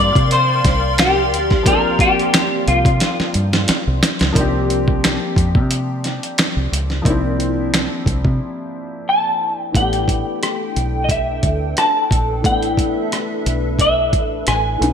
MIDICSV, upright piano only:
0, 0, Header, 1, 2, 480
1, 0, Start_track
1, 0, Tempo, 674157
1, 1180, Time_signature, 4, 2, 24, 8
1, 10630, End_track
2, 0, Start_track
2, 0, Title_t, "Upright piano"
2, 0, Program_c, 0, 0
2, 0, Control_c, 0, 64, 127
2, 0, Note_on_c, 0, 53, 69
2, 0, Note_on_c, 0, 58, 73
2, 0, Note_on_c, 0, 60, 66
2, 0, Note_on_c, 0, 62, 59
2, 0, Note_on_c, 0, 67, 81
2, 1141, Note_off_c, 0, 53, 0
2, 1147, Note_off_c, 0, 58, 0
2, 1154, Note_off_c, 0, 60, 0
2, 1160, Note_on_c, 0, 53, 69
2, 1161, Note_off_c, 0, 62, 0
2, 1168, Note_off_c, 0, 67, 0
2, 1174, Note_on_c, 0, 58, 68
2, 1189, Note_on_c, 0, 60, 61
2, 1202, Note_on_c, 0, 62, 60
2, 1216, Note_on_c, 0, 67, 72
2, 3061, Note_off_c, 0, 53, 0
2, 3068, Note_off_c, 0, 58, 0
2, 3076, Note_off_c, 0, 60, 0
2, 3079, Note_on_c, 0, 53, 76
2, 3083, Note_off_c, 0, 62, 0
2, 3090, Note_off_c, 0, 67, 0
2, 3093, Note_on_c, 0, 58, 73
2, 3107, Note_on_c, 0, 60, 72
2, 3110, Control_c, 0, 64, 0
2, 3120, Note_on_c, 0, 62, 69
2, 3136, Note_on_c, 0, 67, 85
2, 3228, Control_c, 0, 64, 127
2, 4981, Note_off_c, 0, 53, 0
2, 4988, Note_off_c, 0, 58, 0
2, 4995, Note_off_c, 0, 60, 0
2, 4997, Note_on_c, 0, 53, 70
2, 5002, Note_off_c, 0, 62, 0
2, 5009, Note_off_c, 0, 67, 0
2, 5012, Note_on_c, 0, 58, 64
2, 5025, Note_on_c, 0, 60, 69
2, 5039, Note_on_c, 0, 62, 70
2, 5054, Note_on_c, 0, 64, 85
2, 6900, Note_off_c, 0, 53, 0
2, 6907, Note_off_c, 0, 58, 0
2, 6914, Note_off_c, 0, 60, 0
2, 6920, Note_on_c, 0, 52, 55
2, 6921, Note_off_c, 0, 62, 0
2, 6928, Note_off_c, 0, 64, 0
2, 6934, Note_on_c, 0, 57, 51
2, 6948, Note_on_c, 0, 59, 46
2, 6949, Control_c, 0, 64, 0
2, 6962, Note_on_c, 0, 62, 45
2, 6976, Note_on_c, 0, 67, 62
2, 7081, Control_c, 0, 64, 127
2, 8821, Note_off_c, 0, 52, 0
2, 8828, Note_off_c, 0, 57, 0
2, 8835, Note_off_c, 0, 59, 0
2, 8838, Note_on_c, 0, 52, 54
2, 8842, Note_off_c, 0, 62, 0
2, 8849, Note_off_c, 0, 67, 0
2, 8852, Note_on_c, 0, 57, 50
2, 8866, Note_on_c, 0, 59, 49
2, 8880, Note_on_c, 0, 62, 52
2, 8894, Note_on_c, 0, 64, 61
2, 10501, Note_off_c, 0, 52, 0
2, 10507, Note_off_c, 0, 57, 0
2, 10514, Note_off_c, 0, 59, 0
2, 10519, Note_on_c, 0, 52, 43
2, 10522, Note_off_c, 0, 62, 0
2, 10528, Note_off_c, 0, 64, 0
2, 10532, Note_on_c, 0, 57, 47
2, 10548, Note_on_c, 0, 59, 46
2, 10549, Control_c, 0, 64, 0
2, 10561, Note_on_c, 0, 61, 47
2, 10575, Note_on_c, 0, 66, 55
2, 10630, Note_off_c, 0, 52, 0
2, 10630, Note_off_c, 0, 57, 0
2, 10630, Note_off_c, 0, 59, 0
2, 10630, Note_off_c, 0, 61, 0
2, 10630, Note_off_c, 0, 66, 0
2, 10630, End_track
0, 0, End_of_file